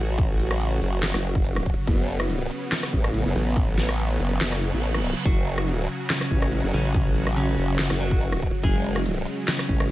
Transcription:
Already playing: A1 C#3 F#3 F#4
0.18 kick, closed hi-hat
0.40 closed hi-hat
0.51 cross-stick
0.61 closed hi-hat
0.82 F#1, closed hi-hat
1.03 snare, clap, closed hi-hat
1.14 F#1, cross-stick
1.24 closed hi-hat
1.35 kick
1.45 closed hi-hat
1.56 cross-stick, closed hi-hat
1.66 kick, closed hi-hat
1.87 F#1 B3, kick, closed hi-hat
2.09 closed hi-hat
2.20 cross-stick
2.30 closed hi-hat
2.51 closed hi-hat
2.72 snare, clap, closed hi-hat
2.83 cross-stick
2.93 A1, kick, closed hi-hat
3.04 cross-stick
3.14 closed hi-hat
3.25 F#1, closed hi-hat
3.35 A1, closed hi-hat
3.56 kick, closed hi-hat
3.78 snare, closed hi-hat
3.89 cross-stick, closed hi-hat
3.99 closed hi-hat
4.20 F#1, closed hi-hat
4.41 F#1, snare, clap, closed hi-hat, reverse cymbal
4.52 cross-stick
4.62 closed hi-hat
4.73 A1
4.83 closed hi-hat
4.94 cross-stick, closed hi-hat
5.04 closed hi-hat
5.25 F#1 F#3 F#4, kick, closed hi-hat
5.47 closed hi-hat
5.58 cross-stick
5.68 closed hi-hat
5.89 closed hi-hat
6.10 C#3 C#4, snare, clap, closed hi-hat
6.21 cross-stick
6.31 A1, kick, closed hi-hat
6.42 cross-stick
6.52 closed hi-hat
6.63 F#1, closed hi-hat
6.73 A1 C#3 C#4, closed hi-hat
6.94 kick, closed hi-hat
7.16 closed hi-hat
7.27 cross-stick
7.37 C#3 C#4, closed hi-hat
7.58 F#1, closed hi-hat
7.79 snare, clap, closed hi-hat
7.90 F#1, cross-stick
8.00 F#3 F#4, closed hi-hat
8.11 kick
8.21 closed hi-hat
8.32 cross-stick, closed hi-hat
8.42 kick, closed hi-hat
8.63 F#1 G#3 G#4, kick, closed hi-hat
8.85 closed hi-hat
8.96 cross-stick
9.06 closed hi-hat
9.27 closed hi-hat
9.48 C#3 C#4, snare, clap, closed hi-hat
9.59 cross-stick
9.69 A1, kick, closed hi-hat
9.80 cross-stick

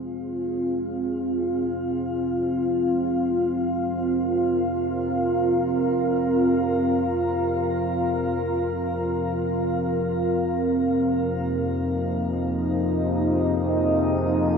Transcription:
Already playing: F2 C3 C4 F4 G#4 F5
3.24 A#4
10.03 F3
10.51 A#3
10.86 D#4
11.61 D#5
12.30 G#4

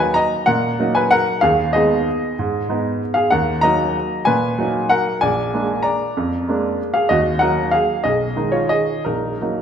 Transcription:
Already playing: D#2 F#3 A#3 D#4 A#4 F#5
0.00 B4 G#5
0.14 D#5 A#5
0.46 A#2 A#4 F#5
0.79 F#3 A#3 D#4
0.95 B4 G#5
1.11 A#4 F#5
1.41 D#2 G#4 F5
1.73 G#3 B3 D#4 G#4 D#5
2.39 G#2
2.69 G#3 B3 D#4
3.14 G#4 F5
3.30 D#2 A#4 F#5
3.61 F#3 A#3 D#4 D#5 A#5
4.25 A#2 B4 G#5
4.58 F#3 A#3 D#4
4.89 A#4 F#5
5.21 A#1 D5 G#5
5.54 G#3 A#3 D4
5.83 D5 A#5
6.17 F2
6.48 G#3 A#3 D4
6.94 G#4 F5
7.09 D#2 F#4 D#5
7.39 F#3 A#3 D#4 A#4 F#5
7.71 G#4 F5
8.04 B1 G#4 D#5
8.36 D#3 G#3 D#4
8.52 F4 C#5
8.69 G#4 D#5
9.05 A#1 D#4 A#4
9.41 F#3 A#3 D#4

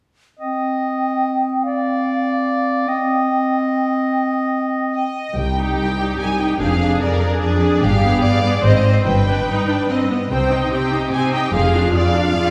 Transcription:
0.40 C4 D#5 G5
1.63 D5 F5
2.88 C4 D#5 G5
4.94 D#5
5.35 C2 G4 G5
5.56 D#4 G4
5.76 C2 G5
5.97 D#4 G4
6.18 C2 G#5
6.38 D#4 G4 G5
6.59 F1 F2 D4 G#4 F5
6.80 D4 G#4
7.00 F2 A#4 D5
7.20 D4 G#4
7.40 F2 G#4 D5
7.61 D4 G#4
7.81 G1 G2 G4 F5
8.02 B3 G#4
8.22 G2 D5 F5
8.43 B3 G#4
8.63 G#1 G#2 C4 C5 D#5
8.85 C4 C5
9.05 G1 G2 B4 G5
9.27 D4 B4
9.47 G2 D#4
9.68 D4
9.88 G2 C4 D#5
10.10 B3
10.30 C2 C3 C4 C5 G5
10.51 D#4 D#5
10.72 C3 C4 G4 C5 G5
10.92 D#4 D#5
11.12 C3 C4 C5 G#5
11.33 D#4 D#5 G5
11.53 F1 F2 F4 G#4 F5
11.74 D4 F4
11.93 F2 F4 G#4 D5 F5
12.15 D4 F4
12.34 F2 F4 G#4 D5

